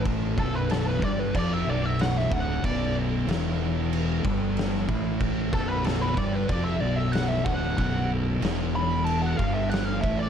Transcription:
<<
  \new Staff \with { instrumentName = "Lead electric guitar" } { \time 4/4 \key b \minor \tempo 4 = 93 r8 a'16 b'16 a'16 b'16 d''16 b'16 d''16 e''16 d''16 e''16 fis''16 e''16 fis''8 | d''8 r2. r8 | r8 a'16 b'16 a'16 b'16 d''16 b'16 d''16 e''16 d''16 e''16 fis''16 e''16 fis''8 | fis''8 r4 b''8 a''16 fis''16 eis''16 e''16 fis''16 eis''16 e''16 d''16 | }
  \new Staff \with { instrumentName = "Distorted electric guitar" } { \clef bass \time 4/4 \key b \minor <a, a>8 <b,, b,>4 <g, g>8 <eis, eis>8 <b,, b,>4 <d, d>8 | <b,, b,>4 <e, e>4. <g, g>4 <a, a>8~ | <a, a>8 <b,, b,>4 <g, g>8 <eis, eis>8 <b,, b,>4 <d, d>8 | <b,, b,>4 <e, e>4. <g, g>4 <a, a>8 | }
  \new Staff \with { instrumentName = "Distorted electric guitar" } { \clef bass \time 4/4 \key b \minor <a, a>8 <b,, b,>4 <g, g>8 <eis, eis>8 <b,, b,>4 <d, d>8 | <b,, b,>4 <e, e>4. <g, g>4 <a, a>8~ | <a, a>8 <b,, b,>4 <g, g>8 <eis, eis>8 <b,, b,>4 <d, d>8 | <b,, b,>4 <e, e>4. <g, g>4 <a, a>8 | }
  \new Staff \with { instrumentName = "Fingered electric bass" } { \clef bass \time 4/4 \key b \minor a,,8 b,,,4 g,,8 eis,,8 b,,,4 d,,8 | b,,,4 e,,4. g,,4 a,,8~ | a,,8 b,,,4 g,,8 eis,,8 b,,,4 d,,8 | b,,,4 e,,4. g,,4 a,,8 | }
  \new DrumStaff \with { instrumentName = "Drums" } \drummode { \time 4/4 <cymc bd>8 bd8 <cymc sn>8 bd8 <cymc bd>4 <cymc sn>16 sn16 bd8 | <cymc bd>4 <cymc sn>4 cymc8 bd8 <cymc sn>16 sn16 bd8 | <cymc bd>8 bd8 <cymc sn>8 bd8 <cymc bd>4 <cymc sn>8 bd8 | <cymc bd>4 <cymc sn>4 cymc8 bd8 <cymc sn>8 bd8 | }
>>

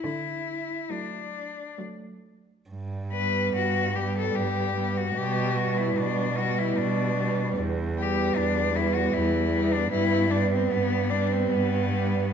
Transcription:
<<
  \new Staff \with { instrumentName = "Cello" } { \time 3/4 \key d \major \tempo 4 = 74 e'4 d'4 r4 | \key g \major r8 b'8 fis'8 g'16 a'16 g'8. fis'16 | g'8 fis'16 e'16 d'8 fis'16 e'16 d'4 | r8 g'8 d'8 e'16 fis'16 e'8. d'16 |
e'8 d'16 c'16 b8 d'16 c'16 b4 | }
  \new Staff \with { instrumentName = "Cello" } { \time 3/4 \key d \major r4 a4 a4 | \key g \major r8 b4 b4 b8 | b8 b4 b4 b8 | r8 b4 b4 b8 |
b8 b4 b4 b8 | }
  \new Staff \with { instrumentName = "Cello" } { \clef bass \time 3/4 \key d \major r4 fis4 fis4 | \key g \major r8 g4 g4 g8 | g8 g4 g4 g8 | r8 g4 g4 g8 |
g8 g4 g4 g8 | }
  \new Staff \with { instrumentName = "Cello" } { \clef bass \time 3/4 \key d \major d4 r2 | \key g \major g,4 g,4 g,4 | b,4 b,4 b,4 | e,4 e,4 e,4 |
g,4 g,4 g,4 | }
>>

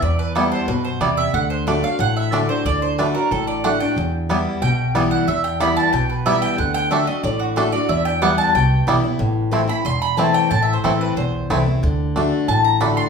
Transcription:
<<
  \new Staff \with { instrumentName = "Mandolin" } { \time 4/4 \key e \minor \tempo 4 = 183 d''8 b'8 a'8 c''8 b'8 c''8 d''8 e''8 | fis''8 c''8 d''8 f''8 fis''8 e''8 d''8 c''8 | d''8 c''8 b'8 ais'8 a'8 d''8 fis''8 g''8~ | g''8 r4. g''4. fis''8 |
e''8 g''8 b''8 a''8 g''8 b'8 e''8 g''8 | fis''8 g''8 e''8 dis''8 d''8 fis'8 a'8 d''8 | e''8 g''8 fis''8 a''8 g''2 | r4. b''8 c'''8 b''8 a''8 g''8 |
\tuplet 3/2 { a''8 e''8 c''8 } a'8 b'8 c''4 r4 | r2 a''8 ais''8 b''8 c'''8 | }
  \new Staff \with { instrumentName = "Five-string banjo" } { \time 4/4 \key e \minor r4 <g b e'>8 r4. <g b e'>8 r8 | r4 <a d'>8 r4. <a d'>8 r8 | r4 <a d'>8 r4. <a d'>8 r8 | r4 <g b e'>8 r4. <g b e'>8 r8 |
r4 <g b e'>8 r4. <g b e'>8 r8 | r4 <a d'>8 r4. <a d'>8 r8 | r4 <g b e'>8 r4. <g b e'>8 r8 | r4 <a c' e'>8 r4. <a c' e'>8 r8 |
r4 <a c' e'>8 r4. <a c' e'>8 r8 | r4 <a d'>8 r4. <a d'>8 r8 | }
  \new Staff \with { instrumentName = "Steel-string acoustic guitar" } { \time 4/4 \key e \minor << { r4 <e g b e'>4 r2 | r4 <d a d' fis'>8 <d' fis'>8 r4 <d a d' fis'>8 <d' fis'>8 | r4 <d a d' fis'>8 <d' fis'>8 r4 <d a d' fis'>8 <d' fis'>8 | r4 <e g b e'>4 r4 <e g b e'>4 |
r4 <e g b e'>4 r4 <e g b e'>4 | r4 <d a d' fis'>8 <d' fis'>8 r4 <d a d' fis'>8 <d' fis'>8 | r4 <e g b e'>4 r4 <e g b e'>8 <b e'>8 | r4 <e a c' e'>8 <c' e'>8 r4 <e a c' e'>4 |
r4 <e a c' e'>4 r4 <e a c' e'>8 <c' e'>8 | r4 <d a d' fis'>4 r4 <d a d' fis'>4 | } \\ { e,2 b,4 c4 | d2 a,2 | d2 a,2 | e,2 b,2 |
e,2 b,2 | d2 a,2 | e,2 b,2 | a,2 e,2 |
a,2 e,2 | d2 a,2 | } >> }
  \new Staff \with { instrumentName = "Upright bass" } { \clef bass \time 4/4 \key e \minor e,2 fis,4 e,4 | d,2 a,,2 | d,2 a,,2 | e,2 b,,2 |
e,2 b,,2 | d,2 a,,2 | e,2 c,4 b,,4 | a,,2 e,,2 |
a,,4 a,,4 b,,4 c,4 | d,2 a,,2 | }
>>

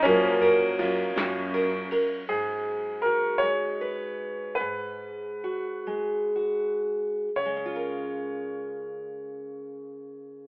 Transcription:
<<
  \new Staff \with { instrumentName = "Grand piano" } { \time 6/8 \key des \mixolydian \tempo 4. = 49 <f bes des'>2~ <f bes des'>8 r8 | aes'4 bes'8 des''4. | ces''2~ ces''8 r8 | des''2. | }
  \new Staff \with { instrumentName = "Steel-string acoustic guitar" } { \time 6/8 \key des \mixolydian << { bes'8 bes'8 f'4 bes'8 bes'8 | r4 ges'4 ces''4 | r4 ges'4 ges'4 | <aes des' f' bes'>2. | } \\ { ges4. des'4. | aes,4. aes4. | aes,4. aes4. | des2. | } >> }
  \new Staff \with { instrumentName = "Cello" } { \clef bass \time 6/8 \key des \mixolydian ges,4 ges,8 ges,4. | r2. | r2. | r2. | }
  \new DrumStaff \with { instrumentName = "Drums" } \drummode { \time 6/8 <bd cymr>8 cymr8 <bd cymr>8 <cymr sn>8 cymr8 cymr8 | r4. r4. | r4. r4. | r4. r4. | }
>>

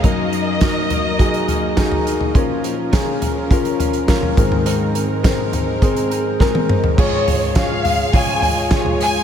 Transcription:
<<
  \new Staff \with { instrumentName = "Violin section" } { \time 4/4 \key des \major \tempo 4 = 104 ees''2.~ ees''8 r8 | r1 | r1 | des''4 f''4 aes''4 r8 aes''8 | }
  \new Staff \with { instrumentName = "Grand piano" } { \time 4/4 \key des \major <ees' ges' bes'>8. r16 <ees' ges' bes'>8. r16 <ees' ges' aes'>8. r16 <ees' ges' aes'>8. r16 | <des' f' bes'>8. r16 <des' f' aes'>8. r16 <des' f' bes'>8. r16 <des' f' bes'>8 <c' aes' bes'>8~ | <c' aes' bes'>8 r8 <c' aes' bes'>8. r16 <c' aes' c''>8. r16 <c' aes' bes'>8. r16 | <f' aes' des''>8. r16 <f' aes' des''>8. r16 <f' aes' des''>8. r16 <f' aes' des''>8. r16 | }
  \new Staff \with { instrumentName = "Grand piano" } { \clef bass \time 4/4 \key des \major <ges, ges>1 | <bes, f>2.~ <bes, f>8 <aes, ees>8~ | <aes, ees>2.~ <aes, ees>8 r8 | <des, aes,>1 | }
  \new Staff \with { instrumentName = "Clean electric guitar" } { \time 4/4 \key des \major <ges bes ees' bes'>8 <bes ees' bes'>8 <ges bes ees' bes'>8 <bes ees' bes'>8 <ges bes ees' bes'>8 <bes ees' bes'>8 <ges bes ees' bes'>8 <bes ees' bes'>8 | <bes, f des' f' bes'>8 <des' f' bes'>8 <bes, f des' f' bes'>8 <des' f' bes'>8 <f des' f' bes'>8 <des' f' bes'>8 <bes, f des' f' bes'>8 <c' ees' bes'>8 | <aes c' ees' bes'>8 <c' ees' bes'>8 <aes c' ees' bes'>8 <c' ees' bes'>8 <aes c' ees' bes'>8 <c' ees' bes'>8 <aes c' ees' bes'>8 <c' ees' bes'>8 | <des f aes f' aes'>8 <aes f' aes'>8 <f aes f' aes'>8 <aes f' aes'>8 <des f aes f' aes'>8 <aes f' aes'>8 <f aes f' aes'>8 <aes f' aes'>8 | }
  \new Staff \with { instrumentName = "String section" } { \time 4/4 \key des \major <ges ees' bes'>1 | <f des' bes'>2.~ <f des' bes'>8 <aes c' bes'>8~ | <aes c' bes'>1 | <aes f' des''>1 | }
  \new DrumStaff \with { instrumentName = "Drums" } \drummode { \time 4/4 <hh bd>8 hh8 <hh bd sn>8 <hh tomfh>8 <hh bd>16 hh16 <hh tomfh>8 <hh bd sn>16 tomfh16 hh16 tomfh16 | <hh bd>8 hh8 <hh bd sn>8 <hh tomfh>8 <hh bd>16 hh16 <hh tomfh>16 hh16 <hh bd sn>16 tomfh16 <hh bd>16 tomfh16 | hh8 hh8 <hh bd sn>8 <hh tomfh>8 <hh bd>16 hh16 hh8 <bd sn>16 tommh16 toml16 tomfh16 | <cymc bd>8 <hho hhp tomfh>8 <hho hhp bd sn>8 <hho hhp tomfh>8 <hho hhp bd>8 <hho hhp tomfh>8 <hho hhp bd sn>16 tomfh16 <hho hhp>8 | }
>>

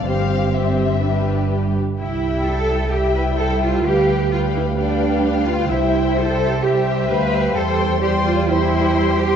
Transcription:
<<
  \new Staff \with { instrumentName = "Violin section" } { \time 4/4 \key c \major \tempo 4 = 129 << { c''4 c''4 b'4. r8 | g''2 g''2 | g''4 g''4 g''2 | g''2 g''2 |
c'''4 c'''4 c'''2 | } \\ { g'4 g'4 g'4. r8 | e''2 e''2 | f''4 f''4 f''2 | e''2 e''4 f''4 |
g''4 g''4 g''2 | } >> }
  \new Staff \with { instrumentName = "Violin section" } { \time 4/4 \key c \major f''4 e''2 r4 | r2 e''4 c''4 | b'2 d''4 f''4 | e''4 c''4 e''2 |
c''4 d''4 c''2 | }
  \new Staff \with { instrumentName = "Cello section" } { \time 4/4 \key c \major g,2.~ g,8 r8 | e'4 a'4 g'8 b'8 a'8 f'8 | g'4 f'8 e'8 d'4. f'8 | e'4 a'4 g'4 b'4 |
a'4 g'8 f'8 e'4. g'8 | }
  \new Staff \with { instrumentName = "Viola section" } { \time 4/4 \key c \major <g c'>4 <g c'>4 <g d'>4. r8 | <g e'>2 <g e'>2 | <g b'>4 <g b'>4 <g b'>2 | <g c''>2 <g c''>2 |
<g c''>4 <g c''>4 <g c''>2 | }
  \new Staff \with { instrumentName = "Double bass section" } { \clef bass \time 4/4 \key c \major g,,2.~ g,,8 r8 | c,1 | d,1 | c,2. d,4 |
e,1 | }
>>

